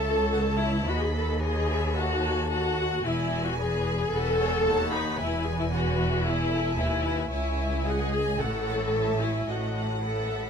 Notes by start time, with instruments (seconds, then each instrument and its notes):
Already playing: double bass section C#2, cello section C#2, viola section A4, violin section C#5 A5
0.05 violin section A5
0.32 violin section F#5 A5
0.59 viola section E4, violin section E5
0.86 double bass section D#2, cello section D#2, viola section F#4, violin section B4 D#5 B5
1.01 viola section G#4
1.14 viola section A4
1.41 viola section G#4, violin section B4 D#5 G#5
1.69 violin section E5
1.96 viola section F#4, violin section A4 F#5 A5
2.23 violin section G#5
2.50 viola section F#4, violin section F#5 A5
2.77 violin section F#5
3.03 double bass section E1, cello section E2, viola section E4, violin section G#4 G#5
3.45 viola section F#4
3.58 viola section G#4, violin section B4
4.11 double bass section E1, cello section E2, viola section A4, violin section B4 F#5
4.38 violin section C#5
4.64 double bass section D#2, cello section D#2, violin section C#5 F#5 A5
4.92 viola section D#4, violin section B5
5.17 double bass section E1, cello section E2, viola section E4, violin section B4 G#5
5.45 viola section G#4
5.59 viola section E4
5.70 viola section F#4, violin section B4 F#5
5.97 violin section E5
6.24 viola section E4, violin section G#4 G#5
6.50 violin section A4
6.77 double bass section D#2, cello section D#2, viola section E4, violin section B4
7.04 violin section B4
7.30 double bass section C#2, cello section C#2, viola section E4, violin section C#5 E5 G#5
7.85 viola section G#4, violin section D#5 F#5
8.13 violin section G#5
8.39 double bass section A1, cello section A2, viola section A4, violin section C#5 F#5
8.67 violin section F#5
8.93 violin section E5 A5
9.20 viola section E4, violin section G#5
9.46 double bass section A1, cello section A2, viola section F#4, violin section A4 D#5 F#5
9.75 violin section F#5
10.02 viola section A4, violin section B4 F#5
10.29 violin section E5